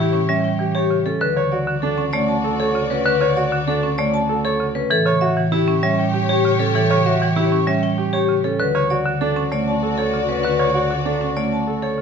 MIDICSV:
0, 0, Header, 1, 6, 480
1, 0, Start_track
1, 0, Tempo, 307692
1, 1889, Time_signature, 6, 2, 24, 8
1, 18745, End_track
2, 0, Start_track
2, 0, Title_t, "Vibraphone"
2, 0, Program_c, 0, 11
2, 0, Note_on_c, 0, 67, 75
2, 283, Note_off_c, 0, 67, 0
2, 453, Note_on_c, 0, 76, 88
2, 692, Note_on_c, 0, 79, 74
2, 762, Note_off_c, 0, 76, 0
2, 1002, Note_off_c, 0, 79, 0
2, 1166, Note_on_c, 0, 67, 84
2, 1480, Note_off_c, 0, 67, 0
2, 1650, Note_on_c, 0, 69, 68
2, 1887, Note_on_c, 0, 71, 82
2, 1961, Note_off_c, 0, 69, 0
2, 2200, Note_off_c, 0, 71, 0
2, 2368, Note_on_c, 0, 74, 70
2, 2681, Note_off_c, 0, 74, 0
2, 2841, Note_on_c, 0, 69, 70
2, 3158, Note_off_c, 0, 69, 0
2, 3320, Note_on_c, 0, 74, 87
2, 3563, Note_on_c, 0, 81, 77
2, 3638, Note_off_c, 0, 74, 0
2, 3879, Note_off_c, 0, 81, 0
2, 4051, Note_on_c, 0, 69, 93
2, 4362, Note_off_c, 0, 69, 0
2, 4527, Note_on_c, 0, 71, 74
2, 4752, Note_off_c, 0, 71, 0
2, 4771, Note_on_c, 0, 71, 94
2, 5082, Note_off_c, 0, 71, 0
2, 5255, Note_on_c, 0, 74, 74
2, 5563, Note_off_c, 0, 74, 0
2, 5735, Note_on_c, 0, 69, 80
2, 6043, Note_off_c, 0, 69, 0
2, 6210, Note_on_c, 0, 74, 95
2, 6454, Note_on_c, 0, 81, 80
2, 6522, Note_off_c, 0, 74, 0
2, 6763, Note_off_c, 0, 81, 0
2, 6938, Note_on_c, 0, 69, 89
2, 7244, Note_off_c, 0, 69, 0
2, 7413, Note_on_c, 0, 71, 80
2, 7655, Note_on_c, 0, 69, 99
2, 7722, Note_off_c, 0, 71, 0
2, 7963, Note_off_c, 0, 69, 0
2, 8128, Note_on_c, 0, 76, 74
2, 8441, Note_off_c, 0, 76, 0
2, 8612, Note_on_c, 0, 67, 77
2, 8922, Note_off_c, 0, 67, 0
2, 9095, Note_on_c, 0, 76, 95
2, 9343, Note_on_c, 0, 79, 83
2, 9403, Note_off_c, 0, 76, 0
2, 9646, Note_off_c, 0, 79, 0
2, 9817, Note_on_c, 0, 67, 96
2, 10124, Note_off_c, 0, 67, 0
2, 10287, Note_on_c, 0, 69, 79
2, 10508, Note_off_c, 0, 69, 0
2, 10527, Note_on_c, 0, 69, 97
2, 10840, Note_off_c, 0, 69, 0
2, 11010, Note_on_c, 0, 76, 79
2, 11322, Note_off_c, 0, 76, 0
2, 11489, Note_on_c, 0, 67, 78
2, 11801, Note_off_c, 0, 67, 0
2, 11971, Note_on_c, 0, 76, 94
2, 12213, Note_on_c, 0, 79, 79
2, 12282, Note_off_c, 0, 76, 0
2, 12522, Note_off_c, 0, 79, 0
2, 12684, Note_on_c, 0, 67, 90
2, 12999, Note_off_c, 0, 67, 0
2, 13172, Note_on_c, 0, 69, 76
2, 13410, Note_on_c, 0, 71, 92
2, 13482, Note_off_c, 0, 69, 0
2, 13721, Note_off_c, 0, 71, 0
2, 13889, Note_on_c, 0, 74, 76
2, 14201, Note_off_c, 0, 74, 0
2, 14369, Note_on_c, 0, 69, 73
2, 14681, Note_off_c, 0, 69, 0
2, 14855, Note_on_c, 0, 74, 92
2, 15092, Note_on_c, 0, 81, 68
2, 15163, Note_off_c, 0, 74, 0
2, 15402, Note_off_c, 0, 81, 0
2, 15562, Note_on_c, 0, 69, 84
2, 15879, Note_off_c, 0, 69, 0
2, 16047, Note_on_c, 0, 71, 66
2, 16262, Note_off_c, 0, 71, 0
2, 16280, Note_on_c, 0, 71, 87
2, 16598, Note_off_c, 0, 71, 0
2, 16764, Note_on_c, 0, 74, 66
2, 17079, Note_off_c, 0, 74, 0
2, 17249, Note_on_c, 0, 69, 63
2, 17561, Note_off_c, 0, 69, 0
2, 17732, Note_on_c, 0, 74, 85
2, 17978, Note_on_c, 0, 81, 64
2, 18042, Note_off_c, 0, 74, 0
2, 18284, Note_off_c, 0, 81, 0
2, 18446, Note_on_c, 0, 69, 72
2, 18745, Note_off_c, 0, 69, 0
2, 18745, End_track
3, 0, Start_track
3, 0, Title_t, "String section"
3, 0, Program_c, 1, 48
3, 0, Note_on_c, 1, 67, 83
3, 0, Note_on_c, 1, 73, 87
3, 1585, Note_off_c, 1, 67, 0
3, 1587, Note_off_c, 1, 73, 0
3, 1889, Note_on_c, 1, 66, 74
3, 1893, Note_on_c, 1, 74, 82
3, 7347, Note_off_c, 1, 66, 0
3, 7349, Note_off_c, 1, 74, 0
3, 7649, Note_on_c, 1, 73, 89
3, 7652, Note_on_c, 1, 67, 88
3, 13107, Note_off_c, 1, 73, 0
3, 13108, Note_off_c, 1, 67, 0
3, 13405, Note_on_c, 1, 66, 80
3, 13408, Note_on_c, 1, 74, 85
3, 18745, Note_off_c, 1, 66, 0
3, 18745, Note_off_c, 1, 74, 0
3, 18745, End_track
4, 0, Start_track
4, 0, Title_t, "Grand piano"
4, 0, Program_c, 2, 0
4, 0, Note_on_c, 2, 64, 78
4, 283, Note_off_c, 2, 64, 0
4, 456, Note_on_c, 2, 61, 69
4, 763, Note_off_c, 2, 61, 0
4, 935, Note_on_c, 2, 67, 69
4, 1172, Note_on_c, 2, 73, 76
4, 1243, Note_off_c, 2, 67, 0
4, 1482, Note_off_c, 2, 73, 0
4, 1651, Note_on_c, 2, 61, 76
4, 1962, Note_off_c, 2, 61, 0
4, 2132, Note_on_c, 2, 73, 89
4, 2372, Note_on_c, 2, 66, 72
4, 2442, Note_off_c, 2, 73, 0
4, 2682, Note_off_c, 2, 66, 0
4, 2853, Note_on_c, 2, 62, 92
4, 3163, Note_off_c, 2, 62, 0
4, 3328, Note_on_c, 2, 61, 72
4, 3641, Note_off_c, 2, 61, 0
4, 3809, Note_on_c, 2, 69, 71
4, 4053, Note_on_c, 2, 73, 72
4, 4121, Note_off_c, 2, 69, 0
4, 4362, Note_off_c, 2, 73, 0
4, 4533, Note_on_c, 2, 61, 78
4, 4843, Note_off_c, 2, 61, 0
4, 5012, Note_on_c, 2, 73, 98
4, 5254, Note_on_c, 2, 66, 78
4, 5322, Note_off_c, 2, 73, 0
4, 5563, Note_off_c, 2, 66, 0
4, 5733, Note_on_c, 2, 62, 87
4, 6043, Note_off_c, 2, 62, 0
4, 6215, Note_on_c, 2, 61, 76
4, 6523, Note_off_c, 2, 61, 0
4, 6697, Note_on_c, 2, 69, 75
4, 6937, Note_on_c, 2, 73, 82
4, 7004, Note_off_c, 2, 69, 0
4, 7244, Note_off_c, 2, 73, 0
4, 7415, Note_on_c, 2, 61, 78
4, 7723, Note_off_c, 2, 61, 0
4, 7896, Note_on_c, 2, 73, 99
4, 8135, Note_on_c, 2, 66, 79
4, 8203, Note_off_c, 2, 73, 0
4, 8443, Note_off_c, 2, 66, 0
4, 8612, Note_on_c, 2, 64, 100
4, 8922, Note_off_c, 2, 64, 0
4, 9093, Note_on_c, 2, 61, 78
4, 9403, Note_off_c, 2, 61, 0
4, 9571, Note_on_c, 2, 67, 80
4, 9814, Note_on_c, 2, 73, 81
4, 9882, Note_off_c, 2, 67, 0
4, 10123, Note_off_c, 2, 73, 0
4, 10290, Note_on_c, 2, 61, 83
4, 10601, Note_off_c, 2, 61, 0
4, 10770, Note_on_c, 2, 73, 105
4, 11011, Note_on_c, 2, 66, 77
4, 11081, Note_off_c, 2, 73, 0
4, 11322, Note_off_c, 2, 66, 0
4, 11488, Note_on_c, 2, 64, 93
4, 11801, Note_off_c, 2, 64, 0
4, 11969, Note_on_c, 2, 61, 76
4, 12281, Note_off_c, 2, 61, 0
4, 12447, Note_on_c, 2, 67, 78
4, 12687, Note_on_c, 2, 73, 84
4, 12760, Note_off_c, 2, 67, 0
4, 13000, Note_off_c, 2, 73, 0
4, 13169, Note_on_c, 2, 61, 74
4, 13481, Note_off_c, 2, 61, 0
4, 13646, Note_on_c, 2, 73, 97
4, 13893, Note_on_c, 2, 66, 76
4, 13960, Note_off_c, 2, 73, 0
4, 14202, Note_off_c, 2, 66, 0
4, 14370, Note_on_c, 2, 62, 90
4, 14681, Note_off_c, 2, 62, 0
4, 14850, Note_on_c, 2, 61, 66
4, 15161, Note_off_c, 2, 61, 0
4, 15331, Note_on_c, 2, 69, 68
4, 15571, Note_on_c, 2, 73, 70
4, 15642, Note_off_c, 2, 69, 0
4, 15882, Note_off_c, 2, 73, 0
4, 16049, Note_on_c, 2, 61, 67
4, 16361, Note_off_c, 2, 61, 0
4, 16526, Note_on_c, 2, 73, 87
4, 16764, Note_on_c, 2, 66, 69
4, 16840, Note_off_c, 2, 73, 0
4, 17079, Note_off_c, 2, 66, 0
4, 17244, Note_on_c, 2, 62, 79
4, 17560, Note_off_c, 2, 62, 0
4, 17733, Note_on_c, 2, 61, 61
4, 18042, Note_off_c, 2, 61, 0
4, 18209, Note_on_c, 2, 69, 60
4, 18451, Note_on_c, 2, 73, 65
4, 18521, Note_off_c, 2, 69, 0
4, 18745, Note_off_c, 2, 73, 0
4, 18745, End_track
5, 0, Start_track
5, 0, Title_t, "Marimba"
5, 0, Program_c, 3, 12
5, 205, Note_on_c, 3, 61, 72
5, 448, Note_on_c, 3, 55, 95
5, 520, Note_off_c, 3, 61, 0
5, 761, Note_off_c, 3, 55, 0
5, 922, Note_on_c, 3, 52, 65
5, 1238, Note_off_c, 3, 52, 0
5, 1409, Note_on_c, 3, 49, 67
5, 1721, Note_off_c, 3, 49, 0
5, 1893, Note_on_c, 3, 50, 89
5, 2131, Note_on_c, 3, 49, 70
5, 2202, Note_off_c, 3, 50, 0
5, 2442, Note_off_c, 3, 49, 0
5, 2611, Note_on_c, 3, 50, 78
5, 2922, Note_off_c, 3, 50, 0
5, 3085, Note_on_c, 3, 61, 77
5, 3329, Note_on_c, 3, 57, 93
5, 3400, Note_off_c, 3, 61, 0
5, 3641, Note_off_c, 3, 57, 0
5, 4290, Note_on_c, 3, 49, 73
5, 4602, Note_off_c, 3, 49, 0
5, 4771, Note_on_c, 3, 50, 97
5, 5008, Note_on_c, 3, 49, 69
5, 5082, Note_off_c, 3, 50, 0
5, 5321, Note_off_c, 3, 49, 0
5, 5493, Note_on_c, 3, 50, 87
5, 5803, Note_off_c, 3, 50, 0
5, 5978, Note_on_c, 3, 61, 73
5, 6218, Note_on_c, 3, 57, 96
5, 6284, Note_off_c, 3, 61, 0
5, 6524, Note_off_c, 3, 57, 0
5, 7175, Note_on_c, 3, 49, 66
5, 7483, Note_off_c, 3, 49, 0
5, 7651, Note_on_c, 3, 52, 98
5, 7892, Note_on_c, 3, 49, 74
5, 7962, Note_off_c, 3, 52, 0
5, 8202, Note_off_c, 3, 49, 0
5, 8374, Note_on_c, 3, 52, 85
5, 8683, Note_off_c, 3, 52, 0
5, 8856, Note_on_c, 3, 61, 85
5, 9094, Note_on_c, 3, 55, 106
5, 9163, Note_off_c, 3, 61, 0
5, 9403, Note_off_c, 3, 55, 0
5, 10057, Note_on_c, 3, 49, 76
5, 10364, Note_off_c, 3, 49, 0
5, 10535, Note_on_c, 3, 52, 94
5, 10780, Note_on_c, 3, 49, 73
5, 10843, Note_off_c, 3, 52, 0
5, 11085, Note_off_c, 3, 49, 0
5, 11255, Note_on_c, 3, 52, 85
5, 11563, Note_off_c, 3, 52, 0
5, 11731, Note_on_c, 3, 61, 82
5, 11971, Note_on_c, 3, 55, 98
5, 12042, Note_off_c, 3, 61, 0
5, 12282, Note_off_c, 3, 55, 0
5, 12927, Note_on_c, 3, 49, 73
5, 13241, Note_off_c, 3, 49, 0
5, 13410, Note_on_c, 3, 50, 99
5, 13650, Note_on_c, 3, 49, 73
5, 13721, Note_off_c, 3, 50, 0
5, 13961, Note_off_c, 3, 49, 0
5, 14125, Note_on_c, 3, 50, 82
5, 14440, Note_off_c, 3, 50, 0
5, 14607, Note_on_c, 3, 61, 75
5, 14847, Note_on_c, 3, 57, 95
5, 14920, Note_off_c, 3, 61, 0
5, 15160, Note_off_c, 3, 57, 0
5, 15810, Note_on_c, 3, 49, 68
5, 16121, Note_off_c, 3, 49, 0
5, 16293, Note_on_c, 3, 50, 91
5, 16530, Note_on_c, 3, 49, 66
5, 16602, Note_off_c, 3, 50, 0
5, 16842, Note_off_c, 3, 49, 0
5, 17014, Note_on_c, 3, 50, 76
5, 17323, Note_off_c, 3, 50, 0
5, 17489, Note_on_c, 3, 61, 72
5, 17733, Note_on_c, 3, 57, 87
5, 17801, Note_off_c, 3, 61, 0
5, 18043, Note_off_c, 3, 57, 0
5, 18692, Note_on_c, 3, 49, 60
5, 18745, Note_off_c, 3, 49, 0
5, 18745, End_track
6, 0, Start_track
6, 0, Title_t, "Double bass"
6, 0, Program_c, 4, 43
6, 0, Note_on_c, 4, 45, 70
6, 1734, Note_off_c, 4, 45, 0
6, 1890, Note_on_c, 4, 38, 64
6, 7491, Note_off_c, 4, 38, 0
6, 7658, Note_on_c, 4, 45, 79
6, 13255, Note_off_c, 4, 45, 0
6, 13414, Note_on_c, 4, 38, 74
6, 18745, Note_off_c, 4, 38, 0
6, 18745, End_track
0, 0, End_of_file